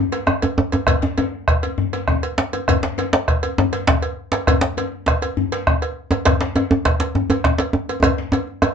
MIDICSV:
0, 0, Header, 1, 4, 480
1, 0, Start_track
1, 0, Tempo, 300300
1, 1403, Time_signature, 12, 3, 24, 8
1, 6677, Tempo, 296296
1, 14075, End_track
2, 0, Start_track
2, 0, Title_t, "Bombo"
2, 432, Note_on_c, 9, 37, 95
2, 592, Note_off_c, 9, 37, 0
2, 1385, Note_on_c, 9, 37, 99
2, 1385, Note_on_c, 9, 43, 94
2, 1545, Note_off_c, 9, 37, 0
2, 1545, Note_off_c, 9, 43, 0
2, 2360, Note_on_c, 9, 37, 95
2, 2360, Note_on_c, 9, 43, 102
2, 2520, Note_off_c, 9, 37, 0
2, 2520, Note_off_c, 9, 43, 0
2, 2845, Note_on_c, 9, 37, 26
2, 3005, Note_off_c, 9, 37, 0
2, 3317, Note_on_c, 9, 37, 82
2, 3317, Note_on_c, 9, 43, 82
2, 3477, Note_off_c, 9, 37, 0
2, 3477, Note_off_c, 9, 43, 0
2, 4282, Note_on_c, 9, 37, 85
2, 4282, Note_on_c, 9, 43, 80
2, 4442, Note_off_c, 9, 37, 0
2, 4442, Note_off_c, 9, 43, 0
2, 4765, Note_on_c, 9, 37, 26
2, 4924, Note_off_c, 9, 37, 0
2, 5241, Note_on_c, 9, 37, 81
2, 5241, Note_on_c, 9, 43, 87
2, 5401, Note_off_c, 9, 37, 0
2, 5401, Note_off_c, 9, 43, 0
2, 6208, Note_on_c, 9, 37, 81
2, 6208, Note_on_c, 9, 43, 85
2, 6368, Note_off_c, 9, 37, 0
2, 6368, Note_off_c, 9, 43, 0
2, 7156, Note_on_c, 9, 37, 84
2, 7156, Note_on_c, 9, 43, 87
2, 7318, Note_off_c, 9, 37, 0
2, 7318, Note_off_c, 9, 43, 0
2, 7650, Note_on_c, 9, 37, 26
2, 7812, Note_off_c, 9, 37, 0
2, 8135, Note_on_c, 9, 37, 90
2, 8135, Note_on_c, 9, 43, 87
2, 8297, Note_off_c, 9, 37, 0
2, 8297, Note_off_c, 9, 43, 0
2, 9096, Note_on_c, 9, 37, 96
2, 9096, Note_on_c, 9, 43, 90
2, 9258, Note_off_c, 9, 37, 0
2, 9258, Note_off_c, 9, 43, 0
2, 10059, Note_on_c, 9, 37, 92
2, 10059, Note_on_c, 9, 43, 93
2, 10221, Note_off_c, 9, 37, 0
2, 10221, Note_off_c, 9, 43, 0
2, 10544, Note_on_c, 9, 37, 29
2, 10706, Note_off_c, 9, 37, 0
2, 11016, Note_on_c, 9, 37, 96
2, 11016, Note_on_c, 9, 43, 97
2, 11178, Note_off_c, 9, 37, 0
2, 11178, Note_off_c, 9, 43, 0
2, 11966, Note_on_c, 9, 37, 92
2, 11966, Note_on_c, 9, 43, 85
2, 12128, Note_off_c, 9, 37, 0
2, 12128, Note_off_c, 9, 43, 0
2, 12914, Note_on_c, 9, 37, 95
2, 12914, Note_on_c, 9, 43, 86
2, 13076, Note_off_c, 9, 37, 0
2, 13076, Note_off_c, 9, 43, 0
2, 13873, Note_on_c, 9, 37, 87
2, 14035, Note_off_c, 9, 37, 0
2, 14075, End_track
3, 0, Start_track
3, 0, Title_t, "Djembe"
3, 194, Note_on_c, 9, 62, 60
3, 354, Note_off_c, 9, 62, 0
3, 425, Note_on_c, 9, 63, 75
3, 438, Note_off_c, 9, 63, 0
3, 438, Note_on_c, 9, 63, 82
3, 597, Note_off_c, 9, 63, 0
3, 689, Note_on_c, 9, 63, 88
3, 849, Note_off_c, 9, 63, 0
3, 924, Note_on_c, 9, 63, 107
3, 1083, Note_off_c, 9, 63, 0
3, 1155, Note_on_c, 9, 63, 56
3, 1172, Note_off_c, 9, 63, 0
3, 1172, Note_on_c, 9, 63, 84
3, 1332, Note_off_c, 9, 63, 0
3, 1395, Note_on_c, 9, 62, 25
3, 1395, Note_on_c, 9, 64, 84
3, 1555, Note_off_c, 9, 62, 0
3, 1555, Note_off_c, 9, 64, 0
3, 1634, Note_on_c, 9, 62, 66
3, 1644, Note_on_c, 9, 63, 76
3, 1794, Note_off_c, 9, 62, 0
3, 1804, Note_off_c, 9, 63, 0
3, 1881, Note_on_c, 9, 63, 88
3, 1888, Note_off_c, 9, 63, 0
3, 1888, Note_on_c, 9, 63, 81
3, 2047, Note_off_c, 9, 63, 0
3, 2607, Note_on_c, 9, 63, 62
3, 2766, Note_off_c, 9, 63, 0
3, 2842, Note_on_c, 9, 62, 27
3, 2842, Note_on_c, 9, 64, 90
3, 3002, Note_off_c, 9, 62, 0
3, 3002, Note_off_c, 9, 64, 0
3, 3091, Note_on_c, 9, 62, 64
3, 3251, Note_off_c, 9, 62, 0
3, 3326, Note_on_c, 9, 63, 82
3, 3486, Note_off_c, 9, 63, 0
3, 3803, Note_on_c, 9, 62, 98
3, 3963, Note_off_c, 9, 62, 0
3, 4046, Note_on_c, 9, 62, 25
3, 4046, Note_on_c, 9, 63, 64
3, 4206, Note_off_c, 9, 62, 0
3, 4206, Note_off_c, 9, 63, 0
3, 4293, Note_on_c, 9, 64, 85
3, 4453, Note_off_c, 9, 64, 0
3, 4523, Note_on_c, 9, 62, 73
3, 4532, Note_off_c, 9, 62, 0
3, 4532, Note_on_c, 9, 62, 66
3, 4692, Note_off_c, 9, 62, 0
3, 4762, Note_on_c, 9, 63, 85
3, 4921, Note_off_c, 9, 63, 0
3, 5003, Note_on_c, 9, 62, 103
3, 5008, Note_off_c, 9, 62, 0
3, 5008, Note_on_c, 9, 62, 26
3, 5168, Note_off_c, 9, 62, 0
3, 5485, Note_on_c, 9, 63, 59
3, 5645, Note_off_c, 9, 63, 0
3, 5726, Note_on_c, 9, 64, 83
3, 5727, Note_on_c, 9, 62, 82
3, 5886, Note_off_c, 9, 64, 0
3, 5887, Note_off_c, 9, 62, 0
3, 5961, Note_on_c, 9, 62, 59
3, 6121, Note_off_c, 9, 62, 0
3, 6192, Note_on_c, 9, 62, 108
3, 6197, Note_on_c, 9, 63, 83
3, 6352, Note_off_c, 9, 62, 0
3, 6357, Note_off_c, 9, 63, 0
3, 6904, Note_on_c, 9, 62, 86
3, 6918, Note_on_c, 9, 63, 60
3, 7066, Note_off_c, 9, 62, 0
3, 7080, Note_off_c, 9, 63, 0
3, 7160, Note_on_c, 9, 64, 80
3, 7322, Note_off_c, 9, 64, 0
3, 7382, Note_on_c, 9, 62, 95
3, 7544, Note_off_c, 9, 62, 0
3, 7642, Note_on_c, 9, 63, 79
3, 7804, Note_off_c, 9, 63, 0
3, 7878, Note_on_c, 9, 62, 24
3, 8040, Note_off_c, 9, 62, 0
3, 8112, Note_on_c, 9, 62, 74
3, 8274, Note_off_c, 9, 62, 0
3, 8361, Note_on_c, 9, 63, 58
3, 8523, Note_off_c, 9, 63, 0
3, 8610, Note_on_c, 9, 64, 86
3, 8772, Note_off_c, 9, 64, 0
3, 8861, Note_on_c, 9, 62, 62
3, 9023, Note_off_c, 9, 62, 0
3, 9099, Note_on_c, 9, 63, 82
3, 9261, Note_off_c, 9, 63, 0
3, 9802, Note_on_c, 9, 63, 97
3, 9823, Note_off_c, 9, 63, 0
3, 9823, Note_on_c, 9, 63, 57
3, 9985, Note_off_c, 9, 63, 0
3, 10046, Note_on_c, 9, 62, 80
3, 10065, Note_on_c, 9, 64, 74
3, 10208, Note_off_c, 9, 62, 0
3, 10227, Note_off_c, 9, 64, 0
3, 10287, Note_on_c, 9, 62, 80
3, 10299, Note_off_c, 9, 62, 0
3, 10299, Note_on_c, 9, 62, 70
3, 10461, Note_off_c, 9, 62, 0
3, 10530, Note_on_c, 9, 63, 90
3, 10542, Note_off_c, 9, 63, 0
3, 10542, Note_on_c, 9, 63, 81
3, 10704, Note_off_c, 9, 63, 0
3, 10776, Note_on_c, 9, 63, 108
3, 10938, Note_off_c, 9, 63, 0
3, 11011, Note_on_c, 9, 62, 76
3, 11173, Note_off_c, 9, 62, 0
3, 11248, Note_on_c, 9, 62, 78
3, 11270, Note_on_c, 9, 63, 57
3, 11410, Note_off_c, 9, 62, 0
3, 11432, Note_off_c, 9, 63, 0
3, 11493, Note_on_c, 9, 64, 75
3, 11495, Note_on_c, 9, 63, 83
3, 11655, Note_off_c, 9, 64, 0
3, 11657, Note_off_c, 9, 63, 0
3, 11730, Note_on_c, 9, 63, 94
3, 11742, Note_on_c, 9, 62, 56
3, 11892, Note_off_c, 9, 63, 0
3, 11904, Note_off_c, 9, 62, 0
3, 11974, Note_on_c, 9, 62, 80
3, 11984, Note_on_c, 9, 63, 74
3, 12136, Note_off_c, 9, 62, 0
3, 12146, Note_off_c, 9, 63, 0
3, 12196, Note_on_c, 9, 62, 84
3, 12358, Note_off_c, 9, 62, 0
3, 12436, Note_on_c, 9, 63, 86
3, 12598, Note_off_c, 9, 63, 0
3, 12691, Note_on_c, 9, 63, 54
3, 12853, Note_off_c, 9, 63, 0
3, 12911, Note_on_c, 9, 63, 99
3, 12933, Note_on_c, 9, 62, 24
3, 12933, Note_on_c, 9, 64, 67
3, 13073, Note_off_c, 9, 63, 0
3, 13095, Note_off_c, 9, 62, 0
3, 13095, Note_off_c, 9, 64, 0
3, 13167, Note_on_c, 9, 62, 61
3, 13329, Note_off_c, 9, 62, 0
3, 13387, Note_on_c, 9, 63, 105
3, 13399, Note_off_c, 9, 63, 0
3, 13399, Note_on_c, 9, 62, 23
3, 13399, Note_on_c, 9, 63, 68
3, 13561, Note_off_c, 9, 62, 0
3, 13561, Note_off_c, 9, 63, 0
3, 13637, Note_on_c, 9, 62, 22
3, 13799, Note_off_c, 9, 62, 0
3, 13876, Note_on_c, 9, 63, 97
3, 14038, Note_off_c, 9, 63, 0
3, 14075, End_track
4, 0, Start_track
4, 0, Title_t, "Drums"
4, 199, Note_on_c, 9, 56, 47
4, 359, Note_off_c, 9, 56, 0
4, 678, Note_on_c, 9, 56, 47
4, 837, Note_off_c, 9, 56, 0
4, 1157, Note_on_c, 9, 56, 44
4, 1316, Note_off_c, 9, 56, 0
4, 1402, Note_on_c, 9, 56, 65
4, 1562, Note_off_c, 9, 56, 0
4, 1879, Note_on_c, 9, 56, 46
4, 2039, Note_off_c, 9, 56, 0
4, 2372, Note_on_c, 9, 56, 46
4, 2532, Note_off_c, 9, 56, 0
4, 2607, Note_on_c, 9, 56, 50
4, 2767, Note_off_c, 9, 56, 0
4, 3087, Note_on_c, 9, 56, 45
4, 3247, Note_off_c, 9, 56, 0
4, 3567, Note_on_c, 9, 56, 48
4, 3727, Note_off_c, 9, 56, 0
4, 4048, Note_on_c, 9, 56, 47
4, 4208, Note_off_c, 9, 56, 0
4, 4297, Note_on_c, 9, 56, 64
4, 4457, Note_off_c, 9, 56, 0
4, 4774, Note_on_c, 9, 56, 52
4, 4934, Note_off_c, 9, 56, 0
4, 5247, Note_on_c, 9, 56, 47
4, 5407, Note_off_c, 9, 56, 0
4, 5482, Note_on_c, 9, 56, 52
4, 5642, Note_off_c, 9, 56, 0
4, 5958, Note_on_c, 9, 56, 49
4, 6118, Note_off_c, 9, 56, 0
4, 6433, Note_on_c, 9, 56, 52
4, 6593, Note_off_c, 9, 56, 0
4, 6922, Note_on_c, 9, 56, 54
4, 7084, Note_off_c, 9, 56, 0
4, 7167, Note_on_c, 9, 56, 75
4, 7329, Note_off_c, 9, 56, 0
4, 7651, Note_on_c, 9, 56, 52
4, 7813, Note_off_c, 9, 56, 0
4, 8136, Note_on_c, 9, 56, 52
4, 8298, Note_off_c, 9, 56, 0
4, 8372, Note_on_c, 9, 56, 54
4, 8534, Note_off_c, 9, 56, 0
4, 8856, Note_on_c, 9, 56, 50
4, 9018, Note_off_c, 9, 56, 0
4, 9341, Note_on_c, 9, 56, 49
4, 9503, Note_off_c, 9, 56, 0
4, 9816, Note_on_c, 9, 56, 49
4, 9978, Note_off_c, 9, 56, 0
4, 10041, Note_on_c, 9, 56, 66
4, 10203, Note_off_c, 9, 56, 0
4, 10533, Note_on_c, 9, 56, 49
4, 10695, Note_off_c, 9, 56, 0
4, 11011, Note_on_c, 9, 56, 48
4, 11173, Note_off_c, 9, 56, 0
4, 11253, Note_on_c, 9, 56, 49
4, 11415, Note_off_c, 9, 56, 0
4, 11740, Note_on_c, 9, 56, 50
4, 11902, Note_off_c, 9, 56, 0
4, 12216, Note_on_c, 9, 56, 47
4, 12378, Note_off_c, 9, 56, 0
4, 12698, Note_on_c, 9, 56, 48
4, 12860, Note_off_c, 9, 56, 0
4, 12931, Note_on_c, 9, 56, 67
4, 13093, Note_off_c, 9, 56, 0
4, 13410, Note_on_c, 9, 56, 49
4, 13572, Note_off_c, 9, 56, 0
4, 13885, Note_on_c, 9, 56, 50
4, 14047, Note_off_c, 9, 56, 0
4, 14075, End_track
0, 0, End_of_file